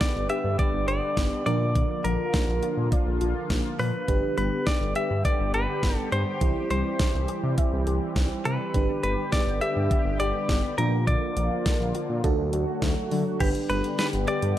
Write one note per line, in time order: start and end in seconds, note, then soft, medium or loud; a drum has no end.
0.00 4.04 D3 medium
0.00 1.42 G3 medium
0.00 1.44 B3 medium
0.00 0.23 B3 medium
0.00 1.42 D4 medium
0.00 1.42 G4 medium
0.00 1.42 B4 medium
0.00 0.29 D5 loud
0.00 kick loud
0.00 snare loud
0.00 closed hi-hat medium
0.15 0.27 G1 medium
0.29 0.52 G4 loud
0.29 0.59 E5 loud
0.29 closed hi-hat medium
0.44 0.57 G2 loud
0.59 0.81 D5 medium
0.59 0.87 D5 loud
0.59 kick loud
0.59 closed hi-hat medium
0.73 0.86 G1 medium
0.88 1.00 G1 loud
0.88 1.10 G4 medium
0.88 1.45 D5 loud
0.88 closed hi-hat medium
1.17 1.29 G1 loud
1.17 1.39 B3 medium
1.17 kick loud
1.17 snare loud
1.17 closed hi-hat medium
1.46 1.83 A#2 loud
1.46 1.68 F3 medium
1.46 4.06 F3 medium
1.46 4.06 A#3 medium
1.46 3.75 D4 medium
1.46 3.75 F4 medium
1.46 4.06 F4 medium
1.46 3.75 A#4 medium
1.46 2.06 D5 loud
1.46 closed hi-hat medium
1.75 1.98 D3 medium
1.75 kick loud
1.75 closed hi-hat medium
2.04 2.17 A#1 loud
2.04 2.27 F3 medium
2.04 2.88 A#4 medium
2.04 closed hi-hat medium
2.34 2.56 A#3 medium
2.34 kick loud
2.34 snare loud
2.34 closed hi-hat medium
2.48 2.60 A#1 loud
2.63 2.85 F4 loud
2.63 closed hi-hat medium
2.77 2.90 A#2 medium
2.92 3.14 D5 medium
2.92 kick loud
2.92 closed hi-hat medium
3.07 3.19 A#1 loud
3.21 3.33 A#1 loud
3.21 3.43 F4 medium
3.21 closed hi-hat medium
3.50 3.62 A#1 loud
3.50 3.72 A#3 medium
3.50 kick loud
3.50 snare loud
3.50 closed hi-hat medium
3.79 3.91 A#2 loud
3.79 4.02 F3 medium
3.79 4.36 B4 medium
3.79 open hi-hat medium
4.08 4.21 G1 loud
4.08 6.39 D3 medium
4.08 4.31 D3 medium
4.08 10.74 G3 medium
4.08 6.39 B3 medium
4.08 6.37 D4 medium
4.08 6.37 G4 medium
4.08 8.70 G4 medium
4.08 6.37 B4 medium
4.08 kick loud
4.08 closed hi-hat medium
4.37 4.50 G1 loud
4.37 4.60 G3 medium
4.37 4.68 B4 medium
4.37 closed hi-hat medium
4.67 4.89 B3 medium
4.67 4.96 D5 loud
4.67 kick loud
4.67 snare loud
4.67 closed hi-hat medium
4.81 4.93 G1 medium
4.95 5.18 G4 loud
4.95 5.25 E5 loud
4.95 closed hi-hat medium
5.10 5.23 G2 medium
5.25 5.47 D5 medium
5.25 5.54 D5 loud
5.25 kick loud
5.25 closed hi-hat medium
5.40 5.52 G1 loud
5.54 5.66 G1 loud
5.54 5.76 G4 medium
5.54 5.96 B4 medium
5.54 closed hi-hat medium
5.83 5.95 G1 loud
5.83 6.05 B3 medium
5.83 kick loud
5.83 snare loud
5.83 closed hi-hat medium
5.96 6.08 A4 medium
6.12 6.24 G2 medium
6.12 6.35 G3 medium
6.12 6.69 C5 loud
6.12 closed hi-hat medium
6.41 6.54 C2 loud
6.41 8.72 E3 medium
6.41 6.64 E3 medium
6.41 8.72 C4 medium
6.41 8.70 E4 medium
6.41 8.70 G4 medium
6.41 8.70 C5 medium
6.41 kick loud
6.41 closed hi-hat medium
6.70 6.83 C2 medium
6.70 6.93 G3 medium
6.70 7.54 C5 medium
6.70 closed hi-hat medium
6.99 7.22 C4 medium
6.99 kick loud
6.99 snare loud
6.99 closed hi-hat medium
7.14 7.26 C2 loud
7.28 7.51 G4 loud
7.28 closed hi-hat medium
7.43 7.56 C3 loud
7.58 7.80 E5 medium
7.58 kick loud
7.58 closed hi-hat medium
7.73 7.85 C2 loud
7.87 7.99 C2 loud
7.87 8.09 G4 medium
7.87 closed hi-hat medium
8.16 8.28 C2 loud
8.16 8.39 C4 medium
8.16 kick loud
8.16 snare loud
8.16 closed hi-hat medium
8.45 8.58 C3 loud
8.45 8.68 G3 medium
8.45 9.02 B4 loud
8.45 closed hi-hat medium
8.74 8.87 G1 loud
8.74 8.97 D3 medium
8.74 10.76 D3 medium
8.74 10.76 B3 medium
8.74 10.74 D4 medium
8.74 10.74 G4 medium
8.74 10.76 G4 medium
8.74 10.74 B4 medium
8.74 kick loud
8.74 closed hi-hat medium
9.03 9.16 G1 loud
9.03 9.26 G3 medium
9.03 9.32 B4 medium
9.03 closed hi-hat medium
9.32 9.55 B3 medium
9.32 9.61 D5 loud
9.32 kick loud
9.32 snare loud
9.32 closed hi-hat medium
9.47 9.59 G1 medium
9.61 9.84 G4 loud
9.61 10.19 E5 loud
9.61 closed hi-hat medium
9.76 9.88 G2 loud
9.91 10.13 D5 medium
9.91 kick loud
9.91 closed hi-hat medium
10.05 10.18 G1 medium
10.20 10.32 G1 loud
10.20 10.42 G4 medium
10.20 10.78 D5 loud
10.20 closed hi-hat medium
10.49 10.61 G1 loud
10.49 10.71 B3 medium
10.49 kick loud
10.49 snare loud
10.49 closed hi-hat medium
10.78 11.15 A#2 loud
10.78 13.38 D3 medium
10.78 12.22 F3 medium
10.78 11.01 F3 medium
10.78 12.22 A#3 medium
10.78 12.21 D4 medium
10.78 12.22 F4 medium
10.78 12.21 F4 medium
10.78 11.07 A#4 medium
10.78 12.21 A#4 medium
10.78 closed hi-hat medium
11.07 11.30 D3 medium
11.07 12.20 D5 medium
11.07 kick loud
11.07 closed hi-hat medium
11.37 11.49 A#1 loud
11.37 11.59 F3 medium
11.37 closed hi-hat medium
11.66 11.88 A#3 medium
11.66 kick loud
11.66 snare loud
11.66 closed hi-hat medium
11.80 11.92 A#1 medium
11.95 12.17 F4 loud
11.95 closed hi-hat medium
12.09 12.22 A#2 medium
12.24 12.36 D2 loud
12.24 13.39 F#3 medium
12.24 13.39 A3 medium
12.24 13.38 D4 medium
12.24 13.38 F#4 medium
12.24 13.39 F#4 medium
12.24 13.38 A4 medium
12.24 12.46 D5 medium
12.24 kick loud
12.24 closed hi-hat medium
12.38 12.51 D2 loud
12.53 12.65 D2 loud
12.53 12.75 F#4 medium
12.53 closed hi-hat medium
12.82 12.94 D2 loud
12.82 13.05 A3 medium
12.82 kick loud
12.82 snare loud
12.82 closed hi-hat medium
13.11 13.24 D3 loud
13.11 13.34 F#3 medium
13.11 open hi-hat medium
13.40 13.53 G1 loud
13.40 14.59 D3 medium
13.40 13.63 D3 loud
13.40 14.59 G3 medium
13.40 14.59 B3 medium
13.40 14.59 D4 medium
13.40 14.59 G4 medium
13.40 13.48 G4 medium
13.40 14.59 G4 medium
13.40 14.59 B4 medium
13.40 kick loud
13.40 closed hi-hat medium
13.40 crash loud
13.55 closed hi-hat medium
13.69 13.82 G1 loud
13.69 13.92 G3 medium
13.69 13.98 B4 medium
13.69 closed hi-hat medium
13.84 closed hi-hat medium
13.99 14.21 B3 medium
13.99 14.07 B4 loud
13.99 snare loud
13.99 closed hi-hat medium
14.13 14.26 G1 medium
14.13 closed hi-hat medium
14.28 14.50 G4 loud
14.28 14.59 D5 loud
14.28 closed hi-hat medium
14.42 14.55 G2 loud
14.42 closed hi-hat medium